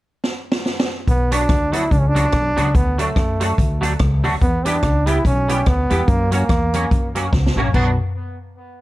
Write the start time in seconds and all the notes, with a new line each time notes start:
0.24 snare
0.52 snare
0.66 snare
0.80 snare
1.07 B1 B3, kick, closed hi-hat
1.32 F#3 B3 D4 F#4, closed hi-hat
1.49 D2, kick, cross-stick, closed hi-hat
1.72 F#3 B3 D4 E4 F#4, closed hi-hat
1.91 C#2 D4, kick, closed hi-hat
2.00 C#4
2.08 D4
2.15 F#3 B3 D4 F#4, closed hi-hat
2.32 B1, kick, cross-stick, closed hi-hat
2.56 C#2 F#3 B3 D4 F#4, closed hi-hat
2.75 D2 B3, kick, closed hi-hat
2.98 F#3 A3 D4 F#4, closed hi-hat
3.16 F#2, muted clean electric guitar stroke, kick, cross-stick, closed hi-hat
3.40 F#3 A3 D4 F#4, closed hi-hat
3.58 D2, kick, closed hi-hat
3.81 F#3 A3 D4 F#4, closed hi-hat
3.99 C#2, kick, cross-stick, closed hi-hat
4.23 D2 F#3 A3 D4 F#4, open hi-hat
4.41 E2 B3, kick, closed hi-hat
4.65 G3 B3 D4 E4 G4, closed hi-hat
4.82 C#2, kick, cross-stick, closed hi-hat
5.06 G3 B3 E4 G4, closed hi-hat
5.25 B1 C#4, kick, closed hi-hat
5.49 G3 B3 E4 G4, closed hi-hat
5.66 D2 B3, kick, cross-stick, closed hi-hat
5.90 E2 G3 B3 E4 G4, closed hi-hat
6.08 F#2 A#3, kick, closed hi-hat
6.32 F#3 A#3 C#4 F#4, closed hi-hat
6.49 E2, muted clean electric guitar stroke, kick, cross-stick, closed hi-hat
6.74 F#3 A#3 C#4 F#4, closed hi-hat
6.91 F#2, kick, closed hi-hat
7.15 F#3 A#3 C#4 F#4, closed hi-hat
7.33 C#2, kick, snare
7.46 snare
7.56 A#1 F#3 A#3 C#4 F#4
7.60 floor tom
7.74 B1 F#3 B3 D4 F#4, kick, crash